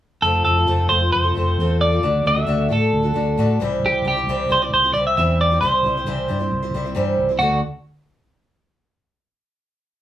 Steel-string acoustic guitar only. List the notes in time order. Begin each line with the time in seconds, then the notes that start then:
0.24 F3 A3 C4 F4 A4
0.44 A3 C4 F4 A4
0.56 C4 F4 A4
0.67 F3 A3 C4 F4 A4
0.90 A3 C4 F4 A4
1.00 C4 F4 A4
1.24 C4 F4 A4
1.35 A3 C4 F4 A4
1.60 A3 C4 F4 A4
1.92 C4 F4 A4
2.03 D3 A3 D4 F#4 A4
2.26 A3 D4 F#4 A4
2.36 D4 F#4 A4
2.47 D3 A3 D4 F#4 A4
2.69 A3 D4 F#4 A4
3.03 D4 F#4 A4
3.14 A3 D4 F#4 A4
3.38 D3 A3 D4 F#4 A4
3.60 C3 E3 G3 C4 E4 C5
4.05 G3 C4 E4 C5
4.16 G3 C4 E4 C5
4.28 C3 E3 G3 C4 E4 C5
4.49 G3 C4 E4 C5
4.61 G3 C4 E4 C5
4.83 G3 C4 E4 C5
4.94 G3 C4 E4 C5
5.17 C3 E3 G3 C4 E4 C5
5.51 G3 C4 E4 C5
5.62 C3 E3 G3 C4 E4 C5
5.84 G3 C4 E4 C5
5.97 G3 C4 E4 C5
6.06 C3 E3 G3 C4 E4 C5
6.28 G3 C4 E4 C5
6.39 G3 C4 E4 C5
6.62 G3 C4 E4 C5
6.74 G3 C4 E4 C5
6.85 G3 C4 E4 C5
6.95 C3 E3 G3 C4 E4 C5
7.29 G3 C4 E4 C5
7.39 D3 A3 D4 F#4 A4